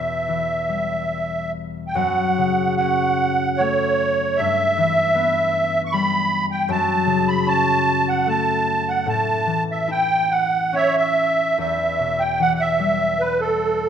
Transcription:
Already playing: E2 B2 C#4 E4 E5
0.28 E3
0.69 G3
1.87 G5
1.95 F#2 F#5
2.38 C#3
2.77 C#4 F#5
3.57 A3 C#5
4.37 G2 E5
4.77 E3
5.15 B3
5.85 C#6
5.92 G3 B5
6.51 G5
6.69 F#2 A5
7.06 C#3
7.28 B5
7.46 C#4 A5
8.09 F#5
8.27 A3 A5
8.89 F#5
9.06 A2 A5
9.46 E3
9.71 E5
9.88 E4 G5
10.31 F#5
10.73 C#4 C#5 E5
10.97 E5
11.58 E2 E5
11.99 B2
12.20 G5
12.39 E3 F#5
12.55 F#5
12.60 E5
12.79 G3
13.20 B4
13.40 A4

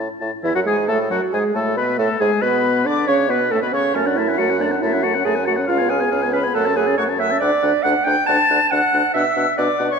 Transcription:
0.21 A2 E4 A5
0.43 E2 E3 E4 E5
0.55 F#2 F#3 F#4 F#5
0.66 G#2 G#3 G#4 G#5
0.87 A2 A3 A4 A5
1.10 F#2 F#3 F#4 F#5
1.32 G#2 G#3 G#4 G#5
1.54 A2 A3 A4 A5
1.77 B2 B3 B4 B5
1.98 A2 A3 A4 A5
2.20 G#2 G#3 G#4 G#5
2.42 B2 B3 B4 B5
2.85 D3 D4 D5 D6
3.07 C#3 C#4 C#5 C#6
3.29 B2 B3 B4 B5
3.51 A2 A3 A4 A5
3.62 B2 B3 B4 B5
3.73 C#3 C#4 C#5 C#6
3.94 F#2 A3 C#4 C#5 A5
4.06 C#4 D4 D5 F#5
4.16 A3 E4 E5 A5
4.29 C#4 F#5
4.38 F#2 A3 F#4 F#5 A5
4.50 C#4 F#5
4.59 A3 D4 D5 A5
4.72 C#4 F#5
4.81 F#2 A3 E4 E5 A5
4.93 C#4 F#5
5.02 A3 F#4 F#5 A5
5.15 C#4 F#5
5.25 F#2 A3 G#4 G#5 A5
5.36 C#4 F#5
5.46 A3 F#4 F#5 A5
5.56 C#4 F#5
5.67 C#2 C#4 F4 F5
5.78 B3 G#5
5.89 C#4 G#4 F5 G#5
6.00 B3 G#5
6.11 C#2 C#4 F5
6.22 B3 G#5
6.33 C#4 B4 F5 B5
6.44 B3 G#5
6.54 F#2 A3 A4 F#5 A5
6.66 C#4 A5
6.76 A3 G#4 F#5 G#5
6.87 C#4 A5
6.97 F#2 A3 C#5 F#5 C#6
7.09 C#4 A5
7.19 A3 E5 F#5 E6
7.31 C#4 A5
7.40 D2 D4 D5 F#5 D6
7.62 D2 D4 F#5
7.83 D2 D4 F#5 F#6
8.04 D2 D4 F#5 G5 G6
8.26 D2 D4 F#5 A5 A6
8.50 D2 D4 F#5
8.70 D2 D4 F#5 F#6
8.93 D2 D4 F#5
9.14 B2 D4 E5 F#5 E6
9.36 B2 D4 F#5
9.57 B2 D4 D5 F#5 D6
9.79 B2 D4 F#5
9.90 C#5 C#6

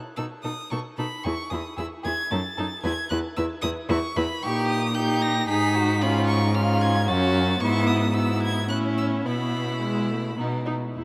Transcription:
0.16 B2 D#4 A4 E6
0.43 B2 D#4 A4 D#6
0.71 B2 D#4 A4 C#6
0.97 B2 D#4 A4 B5
1.24 E2 E4 G#4 C#6
1.50 E2 E4 G#4 D#6
1.77 E2 E4 G#4 E6
2.04 E2 E4 G#4 G#6
2.31 F#2 D#4 A4 A6
2.57 F#2 D#4 A4
2.83 E2 E4 B4 G#6
3.10 E2 E4 B4 F#6
3.37 E2 E4 B4 E6
3.62 E2 E4 B4 D#6
3.89 E2 E4 B4 C#6
4.16 E2 E4 B4 B5
4.42 A#2 D#4 G4 C#6
4.67 D#6
4.95 D#4 G4 G6
5.22 A#6
5.48 G#2 D#4 G#4 B6
5.76 F#4
6.02 C#4 F4 B5
6.27 C#6
6.55 C#4 F4 F6
6.82 G#6
7.07 F#2 C#4 F#4 A6
7.60 G#2 B3 E4 C#6
7.87 D#6
8.14 B3 E4 E6
8.42 G#6
8.69 A2 C#4 E4 F#6
8.98 E6
9.25 B2 B3 E4 B5
9.82 G#3
10.11 A3
10.37 B2 B3 D#4
10.66 D#4
10.94 E2 E4

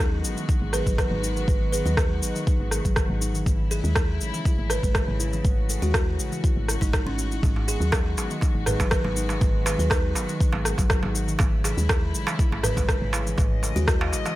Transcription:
Already playing: D#2 D#3 G#3 B3 F#4
0.24 G#1, cabasa
0.37 D#3, cabasa
0.48 D#4, kick, cabasa
0.62 G#1 G#3
0.73 G#4 B4, cross-stick, cabasa
0.86 G#1 F#3, kick, cabasa
0.98 B4, kick, cross-stick, cabasa
1.11 G#1
1.23 D#4, cabasa
1.36 D#3, cabasa
1.48 G#1 G#3, kick, cabasa
1.73 G#4 B4, cabasa
1.85 D#2 F#3 B4, cabasa
1.97 D#4, kick, cross-stick, cabasa
2.22 G#1, cabasa
2.35 D#3, cabasa
2.47 D#4, kick, cabasa
2.60 G#1 G#3
2.71 G#4, cross-stick, cabasa
2.85 G#1 F#3, kick, cabasa
2.96 kick, cross-stick, cabasa
3.09 G#1
3.21 D#4, cabasa
3.34 D#3, cabasa
3.46 G#1 C#3 A3 E4, kick, cabasa
3.71 G#4 A4, cabasa
3.84 D#2 G#3, cabasa
3.95 E4, kick, cross-stick, cabasa
4.20 G#1, cabasa
4.34 E3, cabasa
4.45 E4, kick, cabasa
4.58 G#1 A3
4.70 A4 B4, cross-stick, cabasa
4.83 G#1 G#3, kick, cabasa
4.95 kick, cross-stick, cabasa
5.08 G#1
5.20 E4, cabasa
5.33 E3, cabasa
5.44 G#1 A3 F#4, kick, cabasa
5.69 A4, cabasa
5.82 D#2 G#3 F#4, cabasa
5.94 E4, kick, cross-stick, cabasa
6.19 G#1, cabasa
6.32 E3, cabasa
6.44 E4, kick, cabasa
6.56 G#1 A3
6.68 E4, cross-stick, cabasa
6.81 G#1 G#3 D#4, kick, cabasa
6.93 D#4, kick, cross-stick, cabasa
7.06 G#1 C#4
7.18 A3, cabasa
7.31 E4, cabasa
7.43 G#1 D#3 G#3 B3, kick, darbuka dum, cabasa
7.56 darbuka tek
7.68 G#4, cabasa
7.80 D#2 F#3, cabasa
7.92 D#4, kick, cross-stick, darbuka tek, cabasa
8.16 G#1, darbuka tek, cabasa
8.30 D#3, cabasa
8.41 D#4, kick, darbuka tek, cabasa
8.55 G#1 G#3
8.66 G#4 B4, cross-stick, darbuka dum, cabasa
8.80 G#1 F#3, kick, darbuka tek, cabasa
8.91 B4, kick, cross-stick, cabasa
9.04 G#1, darbuka tek
9.16 D#4, cabasa
9.29 D#3, darbuka tek, cabasa
9.41 G#1 G#3, kick, darbuka dum, cabasa
9.66 G#4 B4, darbuka tek, cabasa
9.79 D#2 F#3 B4, cabasa
9.90 D#4, kick, cross-stick, darbuka tek, cabasa
10.15 G#1, darbuka ka, darbuka tek, cabasa
10.29 D#3, cabasa
10.40 D#4, kick, cabasa
10.53 G#1 G#3, darbuka tek
10.65 G#4, cross-stick, cabasa
10.78 G#1 F#3, kick, darbuka tek, cabasa
10.90 kick, cross-stick, cabasa
11.03 G#1, darbuka tek
11.15 D#4, cabasa
11.28 D#3, cabasa
11.39 G#1 C#3 A3 E4, kick, darbuka tek, darbuka dum, cabasa
11.64 G#4 A4, darbuka tek, cabasa
11.77 D#2 G#3, cabasa
11.89 E4, kick, cross-stick, darbuka tek, cabasa
12.14 G#1, cabasa
12.27 E3, darbuka tek, cabasa
12.39 E4, kick, cabasa
12.52 G#1 A3, darbuka tek
12.63 A4 B4, cross-stick, darbuka dum, cabasa
12.76 G#1 G#3, kick, darbuka tek, cabasa
12.89 kick, cross-stick, cabasa
13.02 G#1
13.13 E4, darbuka tek, cabasa
13.27 E3, cabasa
13.37 G#1 A3 D#5, kick, darbuka tek, darbuka dum, cabasa
13.63 A4, darbuka tek, cabasa
13.76 D#2 G#3 F#4, cabasa
13.87 E4, kick, cross-stick, cabasa
14.01 darbuka tek
14.12 G#1, darbuka ka, cabasa
14.25 E3, darbuka tek, cabasa

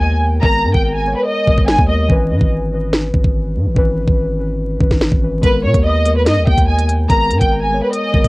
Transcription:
Already playing: D#2 G#3 B3 A#4
0.01 G#5
0.41 G#1 G#3 B3 A#4 A#5, kick
0.64 G#2
0.74 G#1 G5, kick
0.95 G#5
1.04 G#3 B3 C#5
1.16 B4
1.26 D#5
1.45 G#1 G#3 B3 A#4, kick
1.58 kick
1.68 G#5, snare
1.78 D#2, kick
1.87 G#3 B3 A#4 D#5
2.08 G#1 E3 C#4 B4, kick
2.31 G#2
2.39 G#1 E3 C#4 B4, kick
2.70 E3 C#4 B4
2.93 snare
3.14 G#1, kick
3.24 kick
3.56 G#2
3.66 G#1
3.75 G#1 E3 C#4 B4, kick
4.08 G#1, kick
4.37 E3 C#4 B4
4.79 G#1 E3 C#4 B4, kick
4.91 kick, snare
5.01 snare
5.12 G#1, kick
5.20 E3 C#4 B4
5.41 G#1 G#3 B3 A#4 B4, kick, closed hi-hat
5.64 B2 C#5
5.72 D#2 G#3 B3 A#4, kick, closed hi-hat
5.85 D#5
6.04 G#3 B3 A#4, closed hi-hat
6.16 B4
6.26 G#2 D#5, snare, closed hi-hat
6.37 D#2
6.47 D#2 G5, kick
6.58 kick, closed hi-hat
6.68 G#5
6.79 closed hi-hat
6.89 closed hi-hat
7.08 G#1 G#3 B3 A#4 A#5, kick, closed hi-hat
7.31 G#2, closed hi-hat
7.41 G#1 G5, kick, closed hi-hat
7.62 G#5
7.70 G#3 B3 C#5
7.83 B4
7.93 D#5, closed hi-hat
8.12 G#1 G#3 B3 A#4, kick
8.24 kick, closed hi-hat

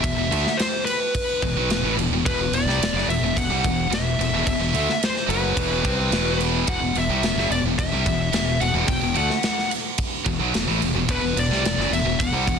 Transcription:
0.00 E1 E5, kick, ride
0.04 E2 B2
0.17 E1 E2 B2
0.31 D2 D3 A3, ride
0.47 snare
0.57 C5, snare, ride
0.85 B4, ride
1.15 kick, ride
1.42 E1 E2 B2, kick, ride
1.56 B1 B2 F#3
1.70 E1 E2 B2, snare, ride
1.83 A1 A2 E3
1.97 E1 E2 B2, ride
2.10 E1 E2 B2
2.26 E1 E2 B2 B4, kick, ride
2.38 E1 E2 B2
2.51 E1 E2 B2 D5, ride
2.65 C2 C3 G3
2.69 snare
2.79 E1 E2 B2, ride
2.83 snare
2.93 F#1 F#2 C#3
2.98 snare
3.07 E1 E2 B2 E5, ride
3.22 E1 E2 B2
3.36 E1 E2 B2 F#5, kick, ride
3.49 C2 C3 G3
3.64 E1 E2 B2, kick, ride
3.90 E1 E2 B2 E5, snare, ride
4.19 E1 E2 B2, ride
4.33 E1 E2 B2
4.47 E1 E2 B2 E5, kick, ride
4.59 E1 E2 B2
4.73 D2 D3 A3, ride
4.89 snare
5.03 C5, snare, ride
5.16 snare
5.27 F#1 F#2 C#3 F#3 B4, ride
5.55 E1 E2 B2 E3, kick, ride
5.84 C2 C3 G3 C4, kick, ride
6.09 E1 E2 B2 E3, snare, ride
6.41 ride
6.66 E1 E2 B2 F#5, kick, ride
6.80 E1 E2 B2
6.95 E1 E2 B2 E5, ride
7.09 C2 C3 G3
7.23 E1 E2 B2, snare, ride
7.36 F#1 F#2 C#3, snare
7.50 E1 E2 B2 D5, ride
7.64 E1 E2 B2
7.78 E1 E2 B2 E5, kick, ride
7.92 C2 C3 G3
8.05 E1 E2 B2, kick, ride
8.33 E1 E2 B2, snare, ride
8.60 E1 E2 B2 F#5, ride
8.74 E1 E2 B2
8.86 E1 E2 B2 G5, kick, ride
9.01 E1 E2 B2
9.14 D2 D3 A3 F#5, ride
9.30 snare
9.43 snare, ride
9.59 snare
9.71 ride
9.98 kick, ride
10.25 E1 E2 B2, kick, ride
10.39 B1 B2 F#3
10.54 E1 E2 B2, snare, ride
10.68 A1 A2 E3
10.81 E1 E2 B2, ride
10.95 E1 E2 B2
11.08 E1 E2 B2 B4, kick, ride
11.22 E1 E2 B2
11.36 E1 E2 B2 D5, ride
11.49 C2 C3 G3, snare
11.64 E1 E2 B2, snare, ride
11.77 F#1 F#2 C#3, snare
11.90 E1 E2 B2 E5, ride
12.05 E1 E2 B2
12.19 E1 E2 B2 F#5, kick, ride
12.33 C2 C3 G3
12.46 E1 E2 B2, kick, ride

